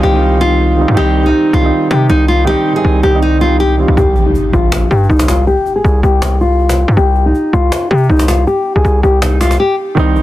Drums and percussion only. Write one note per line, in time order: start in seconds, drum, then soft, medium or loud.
3.97 cajon slap soft
4.16 cajon slap soft
4.35 cajon slap soft
4.53 cajon slap soft
4.72 cajon slap loud
4.91 cajon slap soft
4.97 cajon slap soft
5.03 cajon slap soft
5.10 cajon slap soft
5.16 cajon slap soft
5.19 cajon slap medium
5.22 cajon slap soft
5.28 cajon slap loud
5.47 cajon slap soft
5.66 cajon slap soft
5.85 cajon slap soft
6.03 cajon slap soft
6.22 cajon slap loud
6.41 cajon slap soft
6.60 cajon slap soft
6.69 cajon slap loud
6.97 cajon slap soft
7.16 cajon slap soft
7.34 cajon slap soft
7.53 cajon slap soft
7.72 cajon slap loud
7.91 cajon slap soft
7.97 cajon slap soft
8.03 cajon slap soft
8.10 cajon slap soft
8.16 cajon slap soft
8.19 cajon slap medium
8.22 cajon slap soft
8.28 cajon slap loud
8.47 cajon slap soft
8.85 cajon slap soft
9.03 cajon slap soft
9.22 cajon slap loud
9.41 cajon slap loud
9.51 cajon slap medium
9.97 cajon slap soft
10.16 cajon slap soft